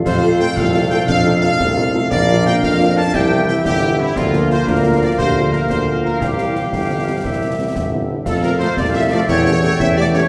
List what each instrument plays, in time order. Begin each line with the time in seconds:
Already playing: euphonium F4
0.05 tuba F2, trombone section F3 A3, woodwind section A4 F5, trumpet section C5, concert bass drum, snare, crash
0.22 french horn section A3 F4 A4, snare
0.39 french horn section A3 F4 A4, trumpet section G5, snare
0.57 tuba C2, trumpet section F5, concert bass drum, snare
0.73 french horn section A3 F4 A4
0.90 french horn section A3 F4 A4, trumpet section G5
1.07 tuba F2, euphonium D4, trumpet section F5, concert bass drum, snare
1.24 french horn section A3 D#4 F4
1.41 french horn section A3 D#4 F4, trumpet section F5, snare
1.59 tuba C2, euphonium C4, concert bass drum, snare
1.76 french horn section A3 D#4 F4
1.93 french horn section A3 D#4 F4
2.10 tuba A#1, trombone section F3 A#3, euphonium D4, woodwind section A#4 F5, trumpet section D5, concert bass drum, snare
2.28 french horn section A#3 D4 F4, snare
2.45 french horn section A#3 D4 F4, trumpet section G5, snare
2.62 tuba F2, trumpet section F5, concert bass drum, snare
2.79 french horn section A#3 D4 F4
2.97 french horn section A#3 D4 F4, trumpet section A5
3.13 tuba C2, trombone section E3 G3, euphonium E4, woodwind section G4 E5, trumpet section G5, concert bass drum, snare
3.31 french horn section G3 C4 E4
3.48 french horn section G3 C4 E4, trumpet section G5, snare
3.64 tuba G1, euphonium E4, trumpet section G4, concert bass drum, snare
3.82 french horn section G3 C4 E4
3.99 french horn section G3 C4 E4, trumpet section E4
4.15 tuba D2, trombone section F3 A#3, euphonium D4, trumpet section F4, woodwind section A#4 F5, concert bass drum, snare, crash
4.33 french horn section A#3 F4, snare
4.50 french horn section A#3 F4, trumpet section C5, snare
4.66 tuba D2, euphonium F4, trumpet section A#4, concert bass drum, snare
4.85 french horn section A#3 F4
5.00 french horn section A#3 F4, trumpet section D5
5.18 tuba D2, euphonium G4, trumpet section C5, concert bass drum, snare
5.35 french horn section A#3 F4
5.53 french horn section A#3 F4, trumpet section A#4, snare
5.69 tuba D2, euphonium F4, trumpet section C5, concert bass drum, snare
5.87 french horn section A#3 F4
6.03 french horn section A#3 F4, trumpet section A#4
6.19 tuba C2, trombone section E3 G3, euphonium E4, trumpet section G4, woodwind section G4, concert bass drum, snare
6.37 french horn section G3 C4 E4, snare
6.54 french horn section G3 C4 E4, snare
6.72 tuba G1, concert bass drum, snare
6.89 french horn section G3 C4 E4
7.06 french horn section G3 C4 E4
7.24 tuba C2, woodwind section E5, concert bass drum, snare
7.41 french horn section G3 C4 E4
7.58 french horn section G3 C4 E4
7.75 tuba G1, concert bass drum, snare
7.92 french horn section G3 C4 E4
8.09 french horn section G3 C4 E4
8.25 tuba F2, euphonium C4, woodwind section A4 F5, flute section A4, trumpet section A4, concert bass drum, snare, crash
8.42 french horn section A3 C4 F4, trumpet section A#4, flute section A#4, snare
8.59 trombone section F3 A3, french horn section A3 C4 F4, flute section C5, trumpet section C5, snare
8.76 tuba C2, euphonium A3, flute section D5, trumpet section D5, concert bass drum, snare
8.93 french horn section A3 C4 F4, trumpet section E5, flute section E5
9.10 trombone section F3 A3, french horn section A3 C4 F4, flute section D5, trumpet section D5
9.27 tuba E2, euphonium E4, trumpet section C#5, flute section C#5, woodwind section G5, concert bass drum, snare
9.45 french horn section A3 C#4 G4, trumpet section C#5, flute section C#5
9.62 trombone section G3 A3, french horn section A3 C#4 G4, trumpet section C#5, flute section C#5, snare
9.79 tuba E2, euphonium C#4, flute section E5, trumpet section E5, concert bass drum, snare
9.96 french horn section A3 C#4 G4, flute section D5, trumpet section D5
10.13 trombone section G3 A3, french horn section A3 C#4 G4, flute section C#5, trumpet section C#5, snare